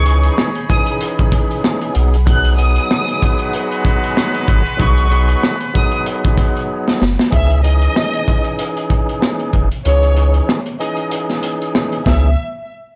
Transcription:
Already playing: sub bass C#2, trumpet section D#4 G#4, string section G#4 C#5 B5, violin section C#6
0.05 tonewheel organ E3 C#4 D#4 G#4, closed hi-hat
0.23 closed hi-hat
0.38 cross-stick, snare
0.55 closed hi-hat
0.69 tonewheel organ E3 C#4 D#4 G#4, violin section D#6, kick, closed hi-hat
0.86 closed hi-hat
1.01 closed hi-hat
1.19 kick, closed hi-hat
1.32 kick, closed hi-hat
1.51 closed hi-hat
1.64 cross-stick, snare
1.81 closed hi-hat
1.94 sub bass B1, tonewheel organ F#3 B3 D#4 G#4, string section F#5 B5, closed hi-hat
2.14 closed hi-hat
2.26 tonewheel organ F#3 B3 D#4 G#4, violin section F#6, kick, closed hi-hat
2.45 closed hi-hat
2.57 tonewheel organ F#3 B3 D#4 G#4, violin section D#6, closed hi-hat
2.76 closed hi-hat
2.91 cross-stick, snare
3.08 closed hi-hat
3.22 trumpet section G#3 F#4 B4, kick, closed hi-hat
3.39 closed hi-hat
3.53 closed hi-hat
3.72 closed hi-hat
3.85 kick, closed hi-hat
4.04 closed hi-hat
4.17 cross-stick, snare
4.34 closed hi-hat
4.48 sub bass G#1, kick, closed hi-hat
4.66 closed hi-hat
4.77 sub bass B1, tonewheel organ F#3 B3 D#4 G#4, violin section C#6, kick, closed hi-hat
4.98 closed hi-hat
5.10 tonewheel organ F#3 B3 D#4 G#4, closed hi-hat
5.29 closed hi-hat
5.43 cross-stick, snare
5.61 closed hi-hat
5.73 tonewheel organ F#3 B3 D#4 G#4, violin section D#6, kick, closed hi-hat
5.92 closed hi-hat
6.06 closed hi-hat
6.24 kick, closed hi-hat
6.38 kick, closed hi-hat
6.56 closed hi-hat
6.88 snare
7.01 sub bass F#1, snare
7.19 snare
7.30 sub bass C#2, tonewheel organ E3 C#4 D#4 G#4, violin section E5, kick, closed hi-hat
7.50 closed hi-hat
7.63 tonewheel organ E3 C#4 D#4 G#4, violin section D#5, closed hi-hat
7.82 closed hi-hat
7.96 cross-stick, snare
8.13 closed hi-hat
8.28 kick, closed hi-hat
8.44 closed hi-hat
8.59 closed hi-hat
8.77 closed hi-hat
8.90 kick, closed hi-hat
9.09 closed hi-hat
9.22 cross-stick, snare
9.40 closed hi-hat
9.53 sub bass F#1, kick, closed hi-hat
9.72 closed hi-hat
9.85 sub bass C#2, tonewheel organ E3 C#4 D#4 G#4, violin section C#5, closed hi-hat
10.03 closed hi-hat
10.13 tonewheel organ E3 C#4 D#4 G#4, closed hi-hat
10.34 closed hi-hat
10.49 cross-stick, snare
10.66 closed hi-hat
10.79 tonewheel organ E3 C#4 D#4 G#4, violin section D#5, closed hi-hat
10.97 closed hi-hat
11.11 closed hi-hat
11.29 snare, closed hi-hat
11.43 closed hi-hat
11.62 closed hi-hat
11.75 cross-stick, snare
11.92 closed hi-hat
12.05 sub bass C#2, tonewheel organ E3 C#4 D#4 G#4, violin section E5, kick, snare

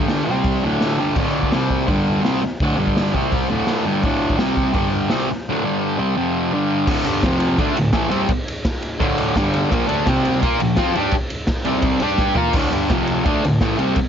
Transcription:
Already playing: distorted electric guitar G2 D3 G3
0.08 snare, open hi-hat
0.29 distorted electric guitar C3 G3 C4
0.44 kick, open hi-hat
0.64 distorted electric guitar D2 A2 D3
0.81 snare, open hi-hat
1.00 distorted electric guitar G2 D3 G3
1.16 distorted electric guitar D2 A2 D3, kick, crash
1.43 kick
1.52 distorted electric guitar C3 G3 C4, snare, open hi-hat
1.70 kick
1.88 distorted electric guitar G2 D3 G3, kick, open hi-hat
2.23 distorted electric guitar C3 G3 C4, snare, open hi-hat
2.43 muted distorted electric guitar stroke
2.60 distorted electric guitar D2 A2 D3, kick, open hi-hat
2.77 distorted electric guitar G2 D3 G3
2.87 kick
2.97 snare, open hi-hat
3.14 distorted electric guitar C3 G3 C4, kick
3.32 kick, open hi-hat
3.50 distorted electric guitar D2 A2 D3
3.67 snare, open hi-hat
3.86 distorted electric guitar G2 D3 G3
4.03 distorted electric guitar D2 A2 D3, kick, open hi-hat
4.30 kick
4.38 distorted electric guitar C3 G3 C4, snare, open hi-hat
4.57 kick
4.74 distorted electric guitar G2 D3 G3, kick, open hi-hat
5.10 distorted electric guitar C3 G3 C4, snare, open hi-hat
5.31 muted distorted electric guitar stroke
5.49 distorted electric guitar D2 A2 D3
5.64 distorted electric guitar G2 D3 G3
5.98 distorted electric guitar C3 G3 C4
6.17 distorted electric guitar F2 C3 F3
6.53 distorted electric guitar G2 D3 G3
6.87 distorted electric guitar D2 A2 D3, kick, crash
7.04 distorted electric guitar G2 D3 G3, ride
7.23 distorted electric guitar F2 C3 F3, kick, snare, ride
7.40 ride
7.58 distorted electric guitar D3 A3 D4, kick, ride
7.77 distorted electric guitar D2 A2, ride
7.93 distorted electric guitar A2 E3 A3, kick, snare, ride
8.10 distorted electric guitar C3 G3 C4, ride
8.29 kick, ride
8.48 ride
8.65 kick, snare, ride
8.82 ride
8.99 distorted electric guitar D2 A2 D3, kick, ride
9.18 ride
9.36 distorted electric guitar G2 D3 G3, kick, snare, ride
9.54 ride
9.71 distorted electric guitar A#2 F3 A#3, kick, ride
9.88 distorted electric guitar D3 A3 D4, ride
10.06 distorted electric guitar C3 G3 C4, kick, snare, ride
10.25 ride
10.42 distorted electric guitar A#3 F4 A#4, kick, ride
10.60 distorted electric guitar A#2 F3, ride
10.76 distorted electric guitar F3 C4 F4, kick, snare, ride
10.95 distorted electric guitar G3 D4 G4, ride
11.11 kick, ride
11.30 ride
11.47 kick, snare, ride
11.65 distorted electric guitar C3 G3 C4, ride
11.82 kick, ride
12.00 distorted electric guitar G3 D4 G4, ride
12.18 kick, snare
12.35 distorted electric guitar A#3 F4 A#4, floor tom
12.53 distorted electric guitar D2 A2 D3, kick, crash
12.71 distorted electric guitar G2 D3 G3, ride
12.90 distorted electric guitar F2 C3 F3, kick, snare, ride
13.07 ride
13.25 distorted electric guitar D3 A3 D4, kick, ride
13.45 distorted electric guitar D2 A2, ride
13.61 distorted electric guitar A2 E3 A3, kick, snare, ride
13.79 distorted electric guitar C3 G3 C4, ride
13.96 kick, ride

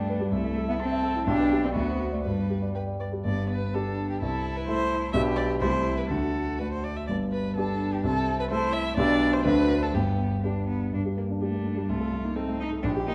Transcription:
Already playing: grand piano G2 B3 G4 D5 G5, cello A3, violin D4
0.09 grand piano B4
0.20 cello G3, grand piano G4
0.32 grand piano C2, cello A3, violin E4
0.44 grand piano A3
0.56 grand piano A4
0.68 cello B3, grand piano E5
0.80 cello C4, violin A4, grand piano A5
0.91 grand piano E5
1.03 grand piano A4
1.15 grand piano E4
1.26 grand piano B1, cello D4, violin G4
1.39 grand piano B3
1.52 grand piano G4
1.64 cello C4, grand piano D5
1.73 grand piano D2, cello B3, violin F#4
1.88 grand piano C4
2.00 grand piano F#4
2.12 cello A3, grand piano D5
2.23 grand piano G2, cello G3, violin B4
2.38 grand piano B3
2.50 grand piano G4
2.62 grand piano D5
2.75 violin B4, grand piano G5
2.86 grand piano D5
3.00 grand piano B4, violin D5
3.12 grand piano G4
3.24 grand piano G1 G2, cello B3, violin D5
3.49 violin B4
3.74 grand piano B3 D4 G4, cello D4, violin A4
4.10 violin G4
4.20 grand piano C2 C3, cello E4, violin A4
4.57 violin B4
4.67 grand piano A3 E4 A4, violin C5
5.13 grand piano B1 B2 B3 D4 G4, cello G4, violin E5
5.36 violin D5
5.60 grand piano C2 C3 A3 E4 G4, cello E4, violin C5
5.98 violin B4
6.09 grand piano D2 D3, cello F#4, violin A4
6.59 grand piano A3 D4 F#4, violin B4
6.72 violin C5
6.84 violin D5
6.96 violin E5
7.07 grand piano G1 G2, violin D5
7.32 violin B4
7.56 grand piano B3 D4 G4, cello D4, violin A4
7.93 violin G4
8.04 grand piano C2 C3, cello C4, violin A4
8.40 violin B4
8.50 grand piano A3 E4 A4, cello E4, violin C5
8.73 violin E5
8.96 grand piano B1 B2 B3 D4 G4, cello D4, violin D5
9.33 violin C5
9.45 grand piano D2 D3 C4 D4 F#4, cello D4, violin B4
9.83 violin A4
9.94 grand piano G1 G2, cello B3, violin G4
10.43 grand piano B3 D4 G4, cello D4
10.68 cello B3
10.93 grand piano G2, cello D4
11.05 grand piano G4
11.17 grand piano A#3, cello A#3
11.30 grand piano D4
11.41 cello A3, violin D4, grand piano G4
11.54 grand piano A#3
11.66 grand piano D4
11.76 cello G3, grand piano G4
11.88 grand piano C2, cello A3, violin F4
12.01 grand piano A4
12.13 grand piano A3
12.24 cello A#3, grand piano D#4
12.36 cello C4, violin D#4, grand piano A4
12.47 grand piano A3
12.60 grand piano D#4, cello D#4
12.72 grand piano A4
12.83 grand piano A#1, cello D4, violin G4
12.96 grand piano G4
13.07 grand piano A#3, cello D#4

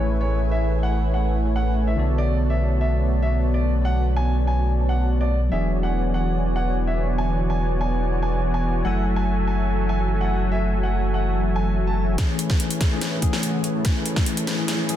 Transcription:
Already playing: sub bass A1, tine electric piano E3 A3 C#4 G#4, supersaw synth A3 E4 B4 C#5 G#5, ambient pad A3 E4 G#4, impact
0.21 grand piano C#5
0.51 grand piano E5
0.83 grand piano F#5
1.14 grand piano F#5
1.56 grand piano F#5
1.87 grand piano E5
1.95 sub bass B1, tine electric piano D3 B3 A4, ambient pad B3, supersaw synth B3 F#4 C#5 D5 A5
2.18 grand piano D5
2.50 grand piano E5
2.81 grand piano E5
3.22 grand piano E5
3.54 grand piano D5
3.85 grand piano F#5
4.16 grand piano G#5
4.47 grand piano G#5
4.89 grand piano F#5
5.21 grand piano D5
5.49 sub bass E1, ambient pad D3 F#4, supersaw synth E3 B3 F#4 C#5 D5 G#5, tine electric piano F#3 D4, grand piano E5
5.53 tine electric piano G#4
5.83 grand piano F#5
6.14 grand piano F#5
6.56 grand piano F#5
6.87 grand piano E5
7.18 grand piano G#5
7.50 grand piano G#5
7.81 grand piano G#5
8.22 grand piano G#5
8.54 grand piano G#5
8.83 sub bass F#1, ambient pad E3 A3, tine electric piano F#3 A3 E4, supersaw synth F#3 F#4 A4 E5 G#5, grand piano F#5
8.87 tine electric piano G#5
9.16 grand piano G#5
9.47 grand piano G#5
9.89 grand piano G#5
10.21 grand piano F#5
10.52 grand piano E5
10.83 grand piano F#5
11.14 grand piano F#5
11.56 grand piano G#5
11.87 grand piano A5
12.16 tine electric piano E3 A3 C#4 G#4, ambient pad E3 A3 E4, supersaw synth A3 E4 B4 C#5 G#5, kick, snare, closed hi-hat, riser
12.39 closed hi-hat
12.50 kick, snare
12.60 closed hi-hat
12.71 closed hi-hat
12.81 supersaw synth A3 E4 B4 C#5 G#5, kick, snare, closed hi-hat
12.91 tine electric piano E3 A3 C#4 G#4
13.01 snare, closed hi-hat
13.22 tine electric piano E3 A3 C#4 G#4, supersaw synth A3 E4 B4 C#5 F#5, kick, closed hi-hat
13.33 snare
13.43 closed hi-hat
13.64 supersaw synth A3 E4 B4 C#5 G#5, closed hi-hat
13.75 supersaw synth A3 E4 B4 C#5 A5
13.83 tine electric piano E3 A3 C#4, kick, snare, closed hi-hat
14.06 closed hi-hat
14.16 kick, snare
14.26 closed hi-hat
14.37 closed hi-hat
14.47 supersaw synth A3 E4 B4 C#5 B5, snare, closed hi-hat
14.57 tine electric piano E3 A3 C#4 G#4
14.68 snare, closed hi-hat
14.88 tine electric piano E3 A3 C#4 G#4, supersaw synth A3 E4 B4 C#5 G#5, closed hi-hat

